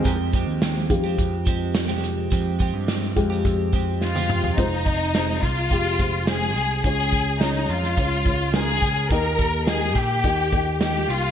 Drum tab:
HH |x-x-x-x-x-x-x-x-|x-x-x-x-x-x-----|x-x-x-xxx-x-x-x-|x-x-x-xxx-x-x-x-|
SD |----o-------o---|----o-------o---|----o-------o---|----o--o----o---|
T1 |----------------|-------------o--|----------------|----------------|
T2 |----------------|--------------o-|----------------|----------------|
FT |----------------|---------------o|----------------|----------------|
BD |o-o---o-o-o-----|o-o---o-o-o-----|o-o---o-o-o-----|o-o-----o-o---o-|

HH |x-x-xxx-x-x-x-x-|
SD |----o-------o---|
T1 |----------------|
T2 |----------------|
FT |----------------|
BD |o-o---o-o-o-----|